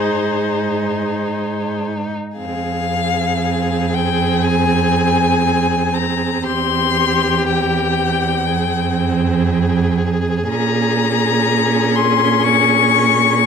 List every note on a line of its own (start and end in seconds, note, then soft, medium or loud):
0.00 2.14 G#2 soft
0.00 2.13 D#4 soft
0.00 1.80 G#4 soft
0.00 1.80 C5 soft
2.37 6.43 F2 soft
2.37 8.45 C4 soft
2.37 6.41 G#4 soft
2.37 3.96 F5 medium
3.94 4.45 G5 medium
4.44 5.95 G#5 medium
5.93 6.45 A#5 medium
6.46 8.51 E2 soft
6.46 8.45 G4 soft
6.46 7.47 C6 medium
7.49 9.94 G5 medium
8.49 10.50 F2 soft
8.49 10.46 C4 soft
8.49 13.46 G#4 soft
10.49 13.46 A#2 soft
10.49 13.46 C#4 medium
10.49 11.97 A#5 medium
11.95 12.45 C6 medium
12.44 13.46 C#6 medium